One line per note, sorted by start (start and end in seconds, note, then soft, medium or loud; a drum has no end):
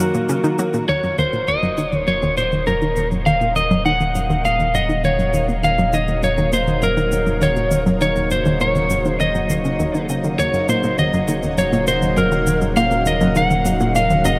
0.00 0.14 F#2 medium
0.00 0.88 D#3 medium
0.00 0.89 F#3 medium
0.00 14.39 A#3 medium
0.00 0.55 F#4 medium
0.00 3.07 F#4 medium
0.00 14.39 A#4 medium
0.14 0.29 A#2 medium
0.14 cabasa soft
0.29 0.35 C#3 medium
0.29 cabasa medium
0.44 0.58 D#3 medium
0.44 cabasa soft
0.59 0.73 F#3 loud
0.59 high conga soft
0.59 cabasa medium
0.74 0.80 A#2 medium
0.74 cabasa soft
0.88 10.36 D#1 medium
0.88 1.03 D#2 medium
0.88 14.39 C#3 medium
0.88 1.18 C#5 medium
0.88 14.39 F#5 medium
0.88 cabasa medium
1.03 1.18 F#2 medium
1.03 cabasa soft
1.11 14.39 D#4 medium
1.15 1.24 D#2 loud
1.15 14.39 F#3 medium
1.15 high conga soft
1.15 cabasa medium
1.19 1.49 C5 medium
1.33 1.47 A#2 medium
1.33 cabasa soft
1.48 1.58 D#2 medium
1.48 1.95 D#5 medium
1.48 cabasa medium
1.63 1.69 F#2 medium
1.63 cabasa soft
1.78 1.84 D#3 medium
1.78 cabasa medium
1.92 2.07 D#2 medium
1.92 2.08 C#5 medium
1.92 high conga soft
1.92 cabasa soft
2.07 2.22 F#2 medium
2.07 2.37 C#5 medium
2.07 cabasa medium
2.22 2.28 D#2 loud
2.22 cabasa soft
2.37 2.51 A#2 medium
2.37 2.66 C5 medium
2.37 cabasa medium
2.52 2.62 D#2 medium
2.52 cabasa soft
2.67 2.73 F#2 loud
2.67 3.08 A#4 medium
2.67 high conga soft
2.67 cabasa medium
2.82 2.88 D#3 medium
2.82 cabasa soft
2.96 3.11 D#2 medium
2.96 cabasa medium
3.11 3.26 F#2 medium
3.11 cabasa soft
3.26 3.32 D#2 loud
3.26 3.56 F5 loud
3.26 cabasa medium
3.41 3.55 A#2 medium
3.41 high conga soft
3.41 cabasa soft
3.56 3.66 D#2 medium
3.56 3.85 D#5 medium
3.56 cabasa medium
3.71 3.77 F#2 loud
3.71 cabasa soft
3.85 3.92 D#3 medium
3.85 4.45 F#5 loud
3.85 cabasa medium
4.00 4.15 D#2 medium
4.00 cabasa soft
4.15 4.29 F#2 medium
4.15 high conga soft
4.15 cabasa medium
4.30 4.36 D#2 loud
4.30 cabasa soft
4.45 4.59 A#2 medium
4.45 4.76 F5 loud
4.45 cabasa medium
4.59 4.70 D#2 medium
4.59 cabasa soft
4.74 4.81 F#2 medium
4.74 5.04 D#5 loud
4.74 cabasa medium
4.89 4.95 D#3 medium
4.89 high conga soft
4.89 cabasa soft
5.04 5.18 D#2 medium
5.04 5.46 C#5 loud
5.04 cabasa medium
5.19 5.33 F#2 medium
5.19 cabasa soft
5.34 5.40 D#2 medium
5.34 cabasa medium
5.49 5.63 A#2 medium
5.49 cabasa soft
5.63 5.74 D#2 medium
5.63 5.95 F5 loud
5.63 high conga soft
5.63 cabasa medium
5.78 5.85 F#2 loud
5.78 cabasa soft
5.93 5.99 D#3 medium
5.93 6.24 D#5 medium
5.93 cabasa medium
6.08 6.22 D#2 medium
6.08 cabasa soft
6.23 6.37 F#2 medium
6.23 6.53 C#5 medium
6.23 cabasa medium
6.38 6.44 D#2 medium
6.38 high conga soft
6.38 cabasa soft
6.53 6.67 A#2 medium
6.53 6.84 C5 medium
6.53 cabasa medium
6.67 6.78 D#2 medium
6.67 cabasa soft
6.82 6.88 F#2 medium
6.82 7.44 A#4 medium
6.82 cabasa medium
6.97 7.03 D#3 medium
6.97 cabasa soft
7.12 7.26 D#2 medium
7.12 high conga soft
7.12 cabasa medium
7.27 7.41 F#2 medium
7.27 cabasa soft
7.42 7.48 D#2 loud
7.42 7.84 C#5 medium
7.42 cabasa medium
7.56 7.71 A#2 medium
7.56 cabasa soft
7.71 7.82 D#2 medium
7.71 cabasa medium
7.86 7.92 F#2 loud
7.86 high conga soft
7.86 cabasa soft
8.01 8.07 D#3 medium
8.01 8.31 C#5 loud
8.01 cabasa medium
8.16 8.30 D#2 medium
8.16 cabasa soft
8.31 8.45 F#2 medium
8.31 8.61 C5 medium
8.31 cabasa medium
8.45 8.52 D#2 loud
8.45 cabasa soft
8.60 8.75 A#2 medium
8.60 9.05 C#5 medium
8.60 high conga soft
8.60 cabasa medium
8.75 8.86 D#2 medium
8.75 cabasa soft
8.90 8.96 F#2 medium
8.90 cabasa medium
9.05 9.11 D#3 medium
9.05 9.20 C5 medium
9.05 cabasa soft
9.20 9.34 D#2 medium
9.20 10.05 D#5 medium
9.20 cabasa medium
9.35 9.49 F#2 medium
9.35 high conga soft
9.35 cabasa soft
9.50 9.60 D#2 medium
9.50 cabasa medium
9.65 9.75 C#3 medium
9.65 cabasa soft
9.80 9.90 D#2 loud
9.80 cabasa medium
9.95 10.05 D#3 medium
9.95 cabasa soft
10.09 10.19 C#3 medium
10.09 high conga soft
10.09 cabasa medium
10.24 10.34 D#3 medium
10.24 cabasa soft
10.39 14.39 D#1 medium
10.39 10.53 D#2 medium
10.39 10.69 C#5 loud
10.39 cabasa medium
10.54 10.68 F#2 medium
10.54 cabasa soft
10.69 10.83 A#2 loud
10.69 10.97 C5 medium
10.69 high conga soft
10.69 cabasa medium
10.83 10.98 A#2 medium
10.83 cabasa soft
10.98 11.09 D#2 medium
10.98 11.58 D#5 medium
10.98 cabasa medium
11.13 11.19 F#2 medium
11.13 cabasa soft
11.28 11.34 D#3 medium
11.28 cabasa medium
11.43 11.57 D#2 medium
11.43 high conga soft
11.43 cabasa soft
11.58 11.72 F#2 medium
11.58 11.87 C#5 medium
11.58 cabasa medium
11.73 11.87 A#2 loud
11.73 cabasa soft
11.87 12.02 A#2 medium
11.87 12.18 C5 medium
11.87 cabasa medium
12.02 12.12 D#2 medium
12.02 cabasa soft
12.17 12.23 F#2 loud
12.17 12.59 A#4 medium
12.17 high conga soft
12.17 cabasa medium
12.32 12.38 D#3 medium
12.32 cabasa soft
12.47 12.61 D#2 medium
12.47 cabasa medium
12.61 12.76 F#2 medium
12.61 cabasa soft
12.76 12.90 A#2 loud
12.76 13.07 F5 loud
12.76 cabasa medium
12.91 13.06 A#2 medium
12.91 high conga soft
12.91 cabasa soft
13.06 13.16 D#2 medium
13.06 13.37 D#5 medium
13.06 cabasa medium
13.21 13.27 F#2 loud
13.21 cabasa soft
13.35 13.42 D#3 medium
13.35 13.96 F#5 loud
13.35 cabasa medium
13.51 13.65 D#2 medium
13.51 cabasa soft
13.65 13.80 F#2 medium
13.65 high conga soft
13.65 cabasa medium
13.80 13.94 A#2 loud
13.80 cabasa soft
13.95 14.09 A#2 medium
13.95 14.26 F5 loud
13.95 cabasa medium
14.10 14.20 D#2 medium
14.10 cabasa soft
14.25 14.31 F#2 loud
14.25 14.39 D#5 loud
14.25 cabasa medium